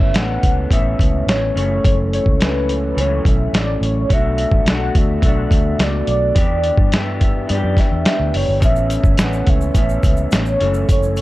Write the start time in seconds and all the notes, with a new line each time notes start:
Already playing: A2 E3 B3 C#4 E5
0.00 G1, kick
0.13 A1 A2 E3 B3 C#4 F#5, snare, closed hi-hat
0.43 C#2, kick, closed hi-hat
0.70 A1 A2 E3 B3 C#4 E5, kick, closed hi-hat
0.99 C#2, kick, closed hi-hat
1.27 A1 C#5, snare, closed hi-hat
1.56 F#1 F#2 E3 A3 C#4 C#5, closed hi-hat
1.84 F#1 C#5, kick, closed hi-hat
2.13 C#5, closed hi-hat
2.26 C#2, kick
2.40 F#2 E3 A3 C#4 B4, snare, closed hi-hat
2.69 closed hi-hat
2.95 C#2 F#2 E3, closed hi-hat
3.00 A3 C#4 C#5
3.25 B1 E5, kick, closed hi-hat
3.53 A1, snare, closed hi-hat
3.57 D5
3.81 A1 C#5, closed hi-hat
4.09 B1 B2 A3 D4 F#4 E5, kick, closed hi-hat
4.38 closed hi-hat
4.51 A1, kick
4.65 B1 B2 A3 D4 F#4, snare, closed hi-hat
4.70 F#5
4.95 D2 E5, kick, closed hi-hat
5.21 B1 B2 A3, kick, closed hi-hat
5.26 D4 F#4
5.50 D2, kick, closed hi-hat
5.79 C#2, snare, closed hi-hat
5.83 D5
6.07 B1 D5, closed hi-hat
6.35 E2 E3 B3 D4 G4, kick, closed hi-hat
6.64 closed hi-hat
6.77 G2, kick
6.92 E3 B3 D4 G4 E5, snare, closed hi-hat
7.21 kick, closed hi-hat
7.47 G2 E3 B3 D5, closed hi-hat
7.52 D4 G4
7.64 F#2
7.77 E5, kick, snare, closed hi-hat
7.92 E2
8.05 snare, closed hi-hat
8.20 D2
8.34 F#1 C#5, open hi-hat
8.48 G1
8.60 A1 A2 E3 B3 C#4 E5, kick, closed hi-hat, shaker
8.76 shaker
8.90 closed hi-hat, shaker
9.04 G1, kick, shaker
9.18 A1 A2 E3 B3 C#4 F#5, snare, closed hi-hat, shaker
9.33 shaker
9.47 C#2 E5, kick, closed hi-hat
9.61 shaker
9.74 A1 A2 E3 B3 C#4, kick, closed hi-hat, shaker
9.89 shaker
10.03 C#2, kick, closed hi-hat, shaker
10.17 shaker
10.31 A1, snare, closed hi-hat, shaker
10.36 C#5
10.46 shaker
10.60 F#1 F#2 E3 A3 C#4, closed hi-hat
10.74 shaker
10.89 F#1 C#5, kick, closed hi-hat, shaker
11.03 shaker
11.16 closed hi-hat, shaker